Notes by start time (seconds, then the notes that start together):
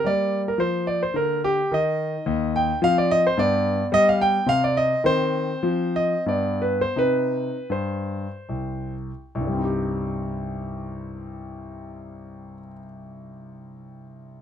0.04 G3 A#3 D5
0.48 A#4
0.58 F3 C5
0.87 D5
1.03 C5
1.14 D3 A#4
1.44 G4
1.72 D#3 D#4 D#5
2.26 D#2
2.56 G5
2.82 F3 C4 F5
2.98 D5
3.11 D#5
3.27 C5
3.37 G2 B3 D5
3.92 G3 D#5
4.09 F5
4.21 G5
4.46 C3 C4 F5
4.64 D5
4.77 D#5
5.04 D#3 C4 C5
5.63 F3 C4
5.96 D#5
6.26 G2 B3 D5
6.62 B4
6.81 C5
6.96 C3 C4 D#4 B4
7.70 G2 C5
8.49 C2
9.35 C2
9.41 G2
9.47 G3
9.53 C4
9.59 D#4
9.65 G4